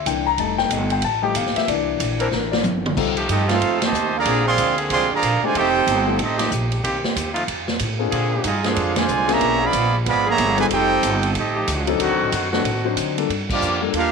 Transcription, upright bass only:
0.06 C2
0.38 F1
0.70 G1
1.02 A1
1.35 G1
1.55 muted upright bass stroke
1.68 C2
1.99 A#1
2.32 A1
2.63 G1
2.97 C2
3.29 G2
3.61 F2
3.92 D#2
4.25 A#1
4.57 D2
4.90 C2
5.10 muted upright bass stroke
5.22 A#1
5.42 muted upright bass stroke
5.55 F1
5.87 G1
6.19 A1
6.51 A#1
6.83 C2
7.03 muted upright bass stroke
7.16 D#2
7.47 F2
7.80 A2
8.12 A#2
8.44 G2
8.76 F2
9.08 C2
9.41 B1
9.73 A#1
10.06 G#1
10.38 G1
10.70 F1
11.03 G1
11.35 A1
11.67 C#2
12.00 D2
12.11 C2
12.22 A1
12.32 F#2
12.64 A2
12.97 D3
13.29 G2
13.62 F2
13.93 D#2

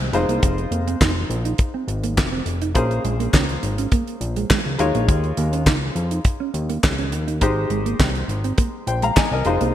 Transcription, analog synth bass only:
0.00 C2
0.13 F1
0.29 C2
0.43 F1
0.71 F1
1.01 F1
1.30 A#1
1.88 G#1
2.17 F1
2.46 F1
2.75 A#1
3.04 A#1
3.33 C#2
3.63 G#1
4.21 A#1
4.66 C#2
4.79 D#2
4.95 A#1
5.09 D#2
5.37 D#2
5.66 C#2
5.95 F2
6.54 D#2
6.84 C#2
7.12 D#2
7.42 G#1
7.70 G#1
8.00 C2
8.28 G#1
8.87 A#1
9.31 C2
9.46 F1
9.61 C2

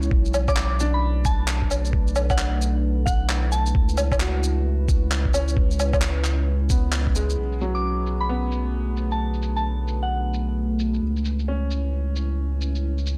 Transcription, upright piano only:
Already playing: C#4
0.80 D4
4.21 F#4
5.34 C#4
6.71 B3
7.16 G#3
7.62 F#3
8.29 B3
11.48 C#4

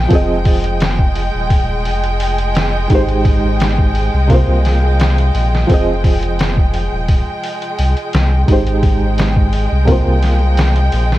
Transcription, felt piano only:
Already playing: C3 A#3 F4 C5
0.08 F3 C4
0.13 G#4 D#5
2.87 G#3 D#4
2.92 G4 C5
4.27 C3 A#3
4.32 F4 C5
5.67 F3 C4
5.71 G#4 D#5
8.46 G#3 D#4
8.50 G4 C5
9.85 C3 A#3
9.89 F4 C5

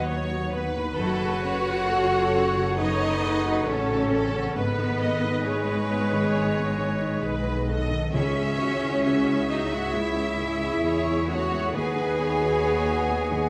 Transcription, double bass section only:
Already playing: D#2
0.99 F#1
3.67 A1
4.56 G#1
7.23 B1
8.14 C#2
10.84 E2
11.74 D#2

